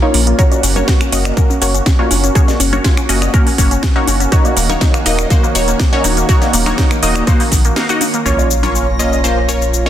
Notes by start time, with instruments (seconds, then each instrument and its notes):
Already playing: analog synth pad A#3 C#4 F4
0.02 supersaw synth A#3 C#4 F4 C#5, synth arpeggio sound D#4
0.14 analog synth bass A#1, synth arpeggio sound A#3, open hi-hat, high conga
0.27 synth arpeggio sound A#3, closed hi-hat
0.39 supersaw synth A#3 C#4 F#4 C#5, analog synth pad C#4 F#4, synth arpeggio sound A#4, kick, closed hi-hat, shaker
0.51 synth arpeggio sound C#4, closed hi-hat, high bongo, shaker
0.63 analog synth bass F#1, synth arpeggio sound C#4, open hi-hat, shaker
0.76 supersaw synth A#3 C#4 F#4 C#5, synth arpeggio sound C#4, closed hi-hat, high conga, low conga, shaker
0.88 synth arpeggio sound F#4, kick, snare, closed hi-hat, shaker
1.01 synth arpeggio sound C#4, finger snap, closed hi-hat, shaker
1.12 analog synth bass F#1, supersaw synth A#3 C#4 F#4 D#5, synth arpeggio sound C#4, open hi-hat, shaker
1.25 finger snap, high bongo, shaker
1.37 supersaw synth A#3 C#4 F#4 A#4, synth arpeggio sound C#4, kick, closed hi-hat, shaker
1.50 synth arpeggio sound C#4, shaker
1.62 analog synth bass F#1, supersaw synth A#3 C#4 F#4 C#5, open hi-hat, shaker
1.74 synth arpeggio sound C#4, closed hi-hat, shaker
1.86 synth arpeggio sound C#4, kick, snare, closed hi-hat, shaker
1.99 supersaw synth A#3 C#4 F#4 C#5, synth arpeggio sound F4, high bongo
2.11 analog synth bass F#1, synth arpeggio sound C#4, open hi-hat, high conga, shaker
2.24 synth arpeggio sound C#4, closed hi-hat, shaker
2.35 supersaw synth A#3 C#4 F#4 C#5, synth arpeggio sound G#4, kick, closed hi-hat, shaker
2.48 synth arpeggio sound C#4, snare, closed hi-hat, high bongo, shaker
2.60 analog synth bass F#1, synth arpeggio sound C#4, open hi-hat, shaker
2.73 supersaw synth A#3 C#4 F#4 C#5, synth arpeggio sound C#4, closed hi-hat, high conga, low conga, shaker
2.84 synth arpeggio sound F4, kick, snare, closed hi-hat, shaker
2.97 synth arpeggio sound C#4, finger snap, closed hi-hat, shaker
3.09 analog synth bass F#1, supersaw synth A#3 C#4 F#4 D#5, synth arpeggio sound C#4, open hi-hat, shaker
3.22 finger snap, closed hi-hat, high bongo, shaker
3.34 supersaw synth A#3 C#4 F#4 A#4, synth arpeggio sound C#4, kick, closed hi-hat, shaker
3.47 synth arpeggio sound C#4, open hi-hat, shaker
3.58 analog synth bass F#1, supersaw synth A#3 C#4 F#4 C#5, kick, open hi-hat, shaker
3.71 synth arpeggio sound C#4, closed hi-hat, shaker
3.83 synth arpeggio sound C#4, kick, snare, closed hi-hat, shaker
3.96 supersaw synth A#3 C#4 F#4 C#5, synth arpeggio sound D#4
4.07 analog synth bass F#1, synth arpeggio sound C#4, open hi-hat, high conga, shaker
4.20 synth arpeggio sound C#4, closed hi-hat, shaker
4.32 analog synth pad D#3 A#3, supersaw synth A#3 D#4 F#4 C#5, synth arpeggio sound F#4, kick, closed hi-hat, shaker
4.45 synth arpeggio sound A#3, closed hi-hat, high bongo, shaker
4.57 analog synth bass D#1, synth arpeggio sound A#3, open hi-hat, shaker
4.69 synth arpeggio sound A#3, supersaw synth A#3 D#4 F#4 C#5, closed hi-hat, high conga, low conga, shaker
4.81 synth arpeggio sound D#4, kick, snare, closed hi-hat, shaker
4.94 synth arpeggio sound A#3, finger snap, closed hi-hat, shaker
5.06 analog synth bass D#1, synth arpeggio sound A#3, supersaw synth A#3 D#4 F#4 D#5, open hi-hat, shaker
5.19 finger snap, closed hi-hat, high bongo, shaker
5.30 synth arpeggio sound A#3, supersaw synth A#3 D#4 F#4 C5, kick, closed hi-hat, shaker
5.43 synth arpeggio sound A#3, shaker
5.55 analog synth bass D#1, supersaw synth A#3 D#4 F#4 C#5, open hi-hat, shaker
5.68 synth arpeggio sound A#3, closed hi-hat, shaker
5.79 synth arpeggio sound A#3, kick, snare, closed hi-hat, shaker
5.92 supersaw synth A#3 D#4 F#4 C#5, synth arpeggio sound C#4, high bongo
6.04 analog synth bass D#1, synth arpeggio sound A#3, open hi-hat, high conga, shaker
6.17 synth arpeggio sound A#3, closed hi-hat, shaker
6.29 supersaw synth A#3 D#4 F#4 C#5, synth arpeggio sound F#4, kick, closed hi-hat, shaker
6.42 synth arpeggio sound A#3, snare, closed hi-hat, high bongo, shaker
6.53 analog synth bass D#1, synth arpeggio sound A#3, open hi-hat, shaker
6.66 supersaw synth A#3 D#4 F#4 C#5, synth arpeggio sound A#3, finger snap, high conga, low conga, shaker
6.78 synth arpeggio sound D#4, kick, snare, closed hi-hat, shaker
6.91 synth arpeggio sound A#3, finger snap, closed hi-hat, shaker
7.03 analog synth bass D#1, supersaw synth A#3 D#4 F#4 D#5, synth arpeggio sound A#3, open hi-hat, shaker
7.15 finger snap, closed hi-hat, high bongo, shaker
7.27 supersaw synth A#3 D#4 F#4 C5, synth arpeggio sound A#3, kick, closed hi-hat, shaker
7.40 synth arpeggio sound A#3, open hi-hat, shaker
7.52 analog synth bass A#1, kick, snare, open hi-hat, shaker
7.65 synth arpeggio sound A#3, closed hi-hat, shaker
7.76 supersaw synth A#3 D#4 F#4 F5, synth arpeggio sound A#3, snare, closed hi-hat, shaker
7.89 supersaw synth A#3 D#4 F#4 D#5, synth arpeggio sound F#4, closed hi-hat, shaker
8.01 synth arpeggio sound A#3, open hi-hat, high conga, shaker
8.14 synth arpeggio sound A#3, closed hi-hat, shaker
8.25 analog synth bass A#1, analog synth pad A#3 C#4 F4, supersaw synth A#3 C#4 F4 C#5, soft synth lead C#5, synth texture A#6, sub drop, shaker
8.38 high bongo, shaker
8.51 shaker
8.63 supersaw synth A#3 C#4 F4 C#5, high conga, low conga, shaker
8.75 shaker
8.99 supersaw synth A#3 C#4 F4 D#5, soft synth lead C#5, shaker
9.12 high bongo, shaker
9.24 supersaw synth A#3 C#4 F4 C5, shaker
9.49 supersaw synth A#3 C#4 F4 C#5, shaker
9.62 shaker
9.74 shaker
9.86 supersaw synth A#3 C#4 F4 C#5, high bongo